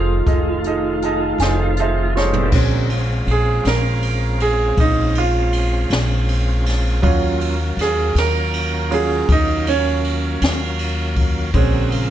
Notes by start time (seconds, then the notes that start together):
Already playing: F1 D#3 A3 D#4 F4 G#4 A4 C5
0.27 F1 D#4 G#4 A4 D#5, kick, closed hi-hat
0.64 D#4 G#4 A4 D#5, closed hi-hat
1.02 D#4 G#4 A4 D#5 A5, closed hi-hat
1.38 F1 D#4 G#4 A4 G#5, snare, closed hi-hat
1.43 C5
1.61 F5
1.77 D#4 G#4 A4 C5 E5, closed hi-hat
2.15 D#4 F4 G#4 A4 C5 C#5, snare
2.23 G3 A3
2.29 B3 C4
2.33 D4 E4, floor tom
2.41 F4 G4
2.46 A4 B4
2.52 A#1 D3 G#3 A#3 C4 C#4 F#4 C5, kick, crash
2.90 G#3 C4 C#4 F4, ride
3.27 A#1, ride
3.31 G#4
3.65 A#1 A#4, snare, ride
4.02 ride
4.40 G#4, ride
4.77 A#1 D#4, kick, ride
5.15 F4, ride
5.53 ride
5.90 A#1, snare, ride
6.29 ride
6.66 snare, ride
7.02 D#2 F#3 A#3 C#4 F4, kick, ride
7.41 ride
7.77 D#2, snare, ride
7.81 G#4
8.15 D#2 A#4, snare, ride
8.54 ride
8.91 F#3 C#4 F4 G#4, ride
9.29 D#2 D#4, kick, ride
9.67 C#4, ride
10.04 ride
10.42 D#2, snare, ride
10.79 ride
11.16 kick, ride
11.53 A#1 D3 G#3 A#3 C4 C#4 F#4, kick, ride
11.92 C#3 G#3 A#3 F4, ride